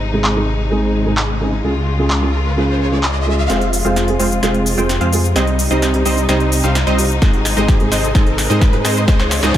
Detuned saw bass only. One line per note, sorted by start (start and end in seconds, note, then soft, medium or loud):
0.00 1.62 G#1 medium
1.64 3.48 C#2 medium
3.50 3.82 F1 medium
3.85 4.17 F1 medium
4.20 4.41 F1 loud
4.43 4.75 F1 loud
4.78 4.99 F1 loud
5.01 5.34 F2 loud
5.36 5.68 C2 medium
5.71 6.03 C2 loud
6.06 6.27 C2 medium
6.29 6.62 C2 loud
6.64 6.85 C2 loud
6.87 7.20 C2 loud
7.22 7.55 G#1 medium
7.57 7.89 G#1 loud
7.92 8.13 G#1 medium
8.15 8.48 G#1 loud
8.50 8.82 G#2 medium
8.85 9.06 G#2 loud
9.08 9.41 C#2 loud
9.43 9.52 C#2 loud
9.55 9.58 C#2 loud